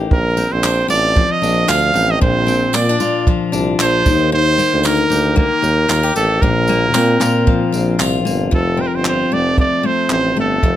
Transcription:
Already playing: D#3 A#3 D#4 G4
0.11 A#1 A#4, kick
0.37 C4, tambourine
0.51 A#1 C5
0.63 D4, clap, tambourine
0.88 A1 F4 D5, tambourine
1.16 F3, kick
1.32 D#5
1.42 A#1 D4, tambourine
1.68 D2 F4 F5, clap, tambourine
1.94 A1 C4, tambourine
2.11 D#5
2.21 A#1 A#2 C5, kick
2.47 C4, tambourine
2.73 A#2 C4 D5, clap, tambourine
2.89 D4
3.00 F4, tambourine
3.27 F3, kick
3.52 C2 D4, tambourine
3.79 A#1 F4 C5, clap, tambourine
4.06 D#2 D#3, kick, tambourine
4.32 D#3 C5
4.58 A#3, tambourine
4.73 D2
4.83 D#4 A#4, clap, tambourine
5.10 D2 G4, tambourine
5.36 A#3 A#4, kick
5.62 D#2 D#4, tambourine
5.88 D#2 F4, clap, tambourine
6.03 G4
6.16 A1 A#3 A4, tambourine
6.42 A#1 A#2 A#4, kick
6.68 A#3, tambourine
6.94 A#2 C4, clap, tambourine
7.20 A#2 F4, clap, tambourine
7.47 F3, kick
7.72 A#1 C4, tambourine
7.99 C2 F4, clap, tambourine
8.25 G1 A#3, tambourine
8.51 F1 F2 A4, kick
8.77 C4 C5
8.87 A#4
8.94 G1 C5
9.05 F4 C5, clap
9.31 F1 A3 D5
9.58 C4 D5, kick
9.83 A3 C5
10.09 A1 C4 C5, clap
10.37 G1 A3 A4
10.63 F1 F2, kick

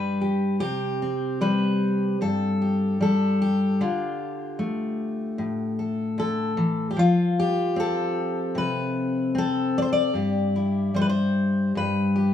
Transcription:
Already playing: G2 G3 G4 B4
0.21 G4
0.60 C3 G4
1.02 C4
1.41 G3 B4
2.21 G2 A4
2.62 G4
3.01 G3 A4
3.42 G4
3.81 D3 F4
4.59 A3
5.38 A2
5.79 A4
6.18 D3 A4
6.57 E3
6.91 G4
6.97 F3 F4
7.39 G4
7.76 C4 A4
8.55 C3 B4
9.35 C4 A4
9.78 D5
9.82 C5
9.93 D5
10.14 G2 G4
10.56 E4
10.94 G3 C5
11.01 B4
11.09 C5
11.75 G2 B4
12.16 G4

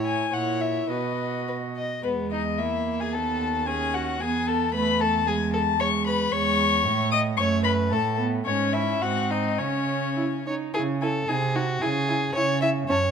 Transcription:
Already playing: A2 E4 C#5
0.04 G#5
0.32 A#2 E4 C#5 F#5
0.61 E5
0.89 B2 F#4 B4 D#5
1.48 B4
1.77 D#5
2.03 E2 G#3 B3 B4
2.31 D#4 D#5
2.58 A#3 E4 E5
3.00 G#4 G#5
3.13 D#2 B3 A4 A5
3.67 C#4 G#4 G#5
3.94 F#4 F#5
4.20 E2 B3 G#4 G#5
4.47 A4 A5
4.74 A3 B4 B5
5.01 A4 A5
5.27 G#3 G#4 G#5
5.53 A4 A5
5.80 G#3 C#5 C#6
6.06 B4 B5
6.32 E2 G#3 C#5 C#6
6.85 A2 A3
7.11 D#5 D#6
7.37 F#2 A3 C#5 C#6
7.64 B4 B5
7.90 A2 A3 A4 A5
8.18 B3
8.45 G#2 C#4 C#5
8.73 E4 E5
9.01 G#2 C4 F#4 F#5
9.30 D#4 D#5
9.58 C#3 C#4 C#5
10.16 E4
10.46 D#4 C#5
10.74 C#3 E4 G#4 G#5
11.01 E4 A4 G#5
11.28 C3 D#4 G#4 G#5
11.55 D#4 F#4 G#5
11.81 C#3 E4 G#4 G#5
12.08 E4 G#5
12.35 C#3 E4 C#5 G#5
12.61 E4 E5 G#5
12.89 F#2 C#4 C#5 A5

